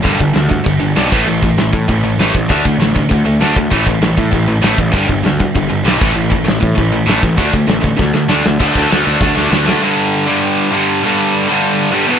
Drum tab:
CC |x-x-x-xx|x-x-x-x-|x-x-x-x-|x-x-x-x-|
SD |--o---o-|--o---o-|--o---o-|--o---o-|
BD |oo-oo--o|-o-oo--o|oo-oo--o|oo-oo--o|

CC |x-x-x-x-|x-x-x-x-|x-x-----|x-x-----|
SD |--o---o-|--o---o-|--o-oooo|--o-oooo|
BD |oo-oo--o|-o-oo--o|oo-oo---|oo--o---|

CC |--------|--------|
SD |--------|--------|
BD |--------|--------|